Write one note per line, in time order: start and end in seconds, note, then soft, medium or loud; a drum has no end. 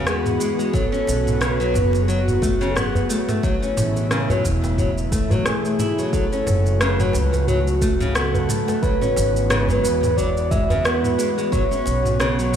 0.00 0.35 E2 medium
0.00 0.71 E3 medium
0.00 0.71 G#3 medium
0.00 3.39 B3 medium
0.00 3.39 F#4 medium
0.06 0.39 B3 medium
0.06 0.75 G#4 medium
0.06 cross-stick medium
0.06 cabasa soft
0.26 mid tom medium
0.26 cabasa soft
0.40 0.51 G#3 medium
0.40 cabasa medium
0.59 0.72 G#3 medium
0.59 cabasa soft
0.73 0.84 F#3 medium
0.73 3.41 F#3 medium
0.73 1.40 A4 loud
0.73 kick loud
0.73 mid tom medium
0.73 cabasa soft
0.92 1.39 C#4 medium
0.92 cabasa soft
1.07 1.70 B1 medium
1.07 djembe slap medium
1.07 cabasa medium
1.27 mid tom medium
1.27 cabasa soft
1.40 1.58 C#3 medium
1.40 2.04 B4 loud
1.40 cross-stick medium
1.40 cabasa soft
1.60 1.74 F#3 medium
1.60 cabasa soft
1.74 3.04 F#1 medium
1.74 mid tom medium
1.74 djembe tone medium
1.74 cabasa medium
1.93 djembe slap soft
1.93 djembe tone medium
1.93 cabasa soft
2.03 2.09 G#4 medium
2.08 2.19 F#3 medium
2.08 2.71 F#4 loud
2.08 cabasa soft
2.28 mid tom medium
2.28 cabasa soft
2.42 2.53 A3 medium
2.42 kick loud
2.42 cabasa medium
2.61 2.74 C#3 medium
2.61 cabasa soft
2.70 2.77 A4 medium
2.76 3.08 B3 medium
2.76 3.29 G#4 medium
2.76 cross-stick medium
2.76 mid tom medium
2.76 cabasa soft
2.95 djembe bass medium
2.95 cabasa soft
3.09 3.20 A3 medium
3.09 cabasa medium
3.28 3.42 A3 medium
3.28 mid tom medium
3.28 djembe slap medium
3.28 cabasa soft
3.43 6.11 B2 medium
3.43 6.10 E3 medium
3.43 3.54 F#3 medium
3.43 8.79 A3 medium
3.43 6.10 E4 medium
3.43 kick loud
3.43 cabasa soft
3.62 4.09 C#4 medium
3.62 cabasa soft
3.77 4.39 A1 medium
3.77 mid tom medium
3.77 djembe slap medium
3.77 cabasa medium
3.96 djembe slap soft
3.96 cabasa soft
4.11 4.28 C#3 loud
4.11 cross-stick medium
4.11 cabasa soft
4.30 4.44 F#3 medium
4.30 mid tom medium
4.30 djembe slap soft
4.30 djembe bass medium
4.30 cabasa soft
4.44 5.31 E1 medium
4.44 kick medium
4.44 djembe tone medium
4.44 cabasa medium
4.64 djembe slap medium
4.64 djembe tone medium
4.64 cabasa soft
4.78 4.89 F#3 medium
4.78 kick medium
4.78 mid tom medium
4.78 cabasa soft
4.98 cabasa soft
5.12 5.30 A3 medium
5.12 kick medium
5.12 djembe tone medium
5.12 cabasa medium
5.30 5.42 A1 medium
5.30 5.44 F#3 medium
5.30 mid tom medium
5.30 djembe bass medium
5.30 cabasa soft
5.45 5.63 A3 medium
5.45 6.14 G#4 loud
5.45 cross-stick loud
5.45 cabasa soft
5.65 cabasa soft
5.79 5.97 E4 medium
5.79 mid tom medium
5.79 cabasa medium
5.98 6.12 F#3 medium
5.98 djembe tone soft
5.98 cabasa soft
6.12 8.80 C#3 medium
6.12 8.80 F#3 medium
6.12 6.24 F#3 medium
6.12 12.56 F#4 medium
6.12 6.79 A4 loud
6.12 kick loud
6.12 cabasa soft
6.33 6.79 C#4 medium
6.33 cabasa soft
6.47 7.09 F#1 medium
6.47 mid tom medium
6.47 djembe slap medium
6.47 cabasa medium
6.66 cabasa soft
6.80 6.98 C#3 medium
6.80 7.49 B4 loud
6.80 cross-stick loud
6.80 cabasa soft
6.99 7.14 F#3 medium
6.99 mid tom medium
6.99 cabasa soft
7.13 8.44 C#2 medium
7.13 djembe tone medium
7.13 cabasa medium
7.33 djembe slap medium
7.33 djembe tone medium
7.33 cabasa soft
7.47 7.59 F#3 medium
7.47 8.16 F#4 loud
7.47 mid tom medium
7.47 cabasa soft
7.67 cabasa soft
7.82 7.92 A3 medium
7.82 kick loud
7.82 cabasa medium
8.00 8.14 C#3 loud
8.00 mid tom medium
8.00 cabasa soft
8.15 8.47 B3 medium
8.15 8.84 A4 loud
8.15 cross-stick loud
8.15 cabasa soft
8.35 djembe bass medium
8.35 cabasa soft
8.49 8.60 A3 medium
8.49 mid tom medium
8.49 cabasa medium
8.68 8.81 A3 medium
8.68 djembe slap medium
8.68 cabasa soft
8.82 11.50 E3 medium
8.82 8.94 F#3 medium
8.82 11.50 G#3 medium
8.82 12.56 B3 medium
8.82 9.49 B4 loud
8.82 kick loud
8.82 cabasa soft
9.01 9.49 C#4 medium
9.01 mid tom medium
9.01 cabasa soft
9.16 9.79 G#1 medium
9.16 djembe slap medium
9.16 cabasa medium
9.36 cabasa soft
9.50 9.67 C#3 loud
9.50 10.18 B4 loud
9.50 cross-stick loud
9.50 mid tom medium
9.50 cabasa soft
9.69 9.83 F#3 medium
9.69 djembe bass medium
9.69 cabasa soft
9.84 11.13 E2 medium
9.84 djembe tone medium
9.84 cabasa medium
10.03 mid tom medium
10.03 djembe slap soft
10.03 djembe tone medium
10.03 cabasa soft
10.17 10.29 F#3 medium
10.17 10.52 D5 loud
10.17 kick medium
10.17 cabasa soft
10.37 cabasa soft
10.51 10.62 G#3 loud
10.51 10.86 E5 loud
10.51 kick loud
10.51 mid tom medium
10.51 djembe tone medium
10.51 cabasa medium
10.70 10.84 C#3 medium
10.70 djembe bass medium
10.70 cabasa soft
10.85 11.17 B3 medium
10.85 11.52 B4 loud
10.85 cross-stick loud
10.85 cabasa soft
11.04 mid tom medium
11.04 cabasa soft
11.18 11.29 G#3 medium
11.18 cabasa medium
11.38 11.51 G#3 medium
11.38 cabasa soft
11.51 12.56 F#3 medium
11.51 11.63 F#3 medium
11.51 12.16 C#5 loud
11.51 kick loud
11.51 mid tom medium
11.51 cabasa soft
11.71 12.18 C#4 medium
11.71 cabasa soft
11.86 12.48 B1 medium
11.86 djembe slap medium
11.86 cabasa medium
12.05 mid tom medium
12.05 cabasa soft
12.19 12.37 C#3 loud
12.19 12.56 C#5 loud
12.19 cross-stick medium
12.19 cabasa soft
12.39 12.53 F#3 medium
12.39 cabasa soft